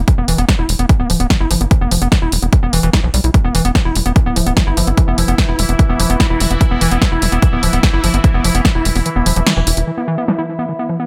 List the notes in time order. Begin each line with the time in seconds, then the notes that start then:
0.08 E3, kick, closed hi-hat
0.18 E1 B3
0.28 E1 E3, open hi-hat
0.38 E1 B3, closed hi-hat
0.49 F3, kick, snare, closed hi-hat
0.59 E1 E4
0.69 E1 E3, open hi-hat
0.79 E1 B3, closed hi-hat
0.89 E3, kick, closed hi-hat
1.00 D1 B3
1.10 D1 F3, open hi-hat
1.20 D1 B3, closed hi-hat
1.30 E3, kick, snare, closed hi-hat
1.40 G1 E4
1.51 G1 F3, open hi-hat
1.61 G1 B3, closed hi-hat
1.71 E3, kick, closed hi-hat
1.81 F1 B3
1.91 F1 F3, open hi-hat
2.02 F1 B3, closed hi-hat
2.12 E3, kick, snare, closed hi-hat
2.22 E1 E4
2.32 E1 E3, open hi-hat
2.42 E1 B3, closed hi-hat
2.53 E3, kick, closed hi-hat
2.63 E1 B3
2.73 E1 E3, open hi-hat
2.83 E1 E3, closed hi-hat
2.93 E4, kick, snare, closed hi-hat
3.04 B1 F3
3.14 B1 G3, open hi-hat
3.24 B1 E4, closed hi-hat
3.34 E3 E4, kick, closed hi-hat
3.44 E1 B3
3.55 E1 E3, open hi-hat
3.65 E1 B3, closed hi-hat
3.75 F3, kick, snare, closed hi-hat
3.85 E1 E4
3.95 E1 E3, open hi-hat
4.06 E1 B3, closed hi-hat
4.16 E3, kick, closed hi-hat
4.26 D1 B3
4.36 D1 F3, open hi-hat
4.46 D1 B3, closed hi-hat
4.57 E3, kick, snare, closed hi-hat
4.67 G1 E4
4.77 G1 F3, open hi-hat
4.87 G1 B3, closed hi-hat
4.98 E3, kick, closed hi-hat
5.08 F1 B3
5.18 F1 F3, open hi-hat
5.28 F1 B3, closed hi-hat
5.38 E3, kick, snare, closed hi-hat
5.49 E1 E4
5.59 E1 E3, open hi-hat
5.69 E1 B3, closed hi-hat
5.79 E3, kick, closed hi-hat
5.89 E1 B3
6.00 E1 F3, open hi-hat
6.10 E1 B3, closed hi-hat
6.20 E4, kick, snare, closed hi-hat
6.30 E1 E4
6.40 E1 E3, open hi-hat
6.51 E1 B3, closed hi-hat
6.61 E3, kick, closed hi-hat
6.71 E1 B3
6.81 E1 E3, open hi-hat
6.91 E1 B3, closed hi-hat
7.02 F3, kick, snare, closed hi-hat
7.12 E1 E4
7.22 E1 E3, open hi-hat
7.32 E1 B3, closed hi-hat
7.42 E3, kick, closed hi-hat
7.53 D1 B3
7.63 D1 F3, open hi-hat
7.73 D1 B3, closed hi-hat
7.83 E3, kick, snare, closed hi-hat
7.93 G1 E4
8.04 G1 F3, open hi-hat
8.14 G1 B3, closed hi-hat
8.24 E3, kick, closed hi-hat
8.34 F1 B3
8.44 F1 F3, open hi-hat
8.55 F1 B3, closed hi-hat
8.65 E3, kick, snare, closed hi-hat
8.75 E1 E4
8.85 E1 E3, open hi-hat
8.95 E1 B3, open hi-hat
9.06 E3, closed hi-hat
9.16 E1 B3
9.26 E1 F3, open hi-hat
9.36 E1 F3, closed hi-hat
9.47 E3, snare, closed hi-hat
9.57 E1 E3
9.67 E1 E4, open hi-hat
9.77 E1 E4, closed hi-hat
9.87 E3 E4, crash
9.98 B3
10.08 E3
10.18 B3
10.28 F3, snare
10.38 E4
10.49 E3
10.59 B3
10.69 E3
10.79 B3
10.89 F3
11.00 B3